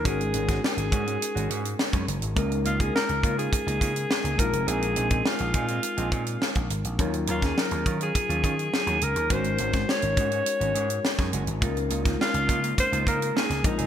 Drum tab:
HH |xxxx-xxxxxxx-xxx|xxxx-xxxxxxx-xxx|xxxx-xxxxxxx-xxx|xxxx-xxxxxxx-xxx|
SD |---oo-------o---|----o-------o---|----o-------o---|---oo-------o---|
BD |o--o--o------o--|o--o--o-o-o---o-|---o--o---o--o--|o--o--o-o-o-----|

HH |xxxx-xxxxxxx-xxx|xxxx-xxxxxxx-xxx|
SD |---oo-------oo--|---oo-------oo--|
BD |o--o--o------o--|o--o--o-o-o---o-|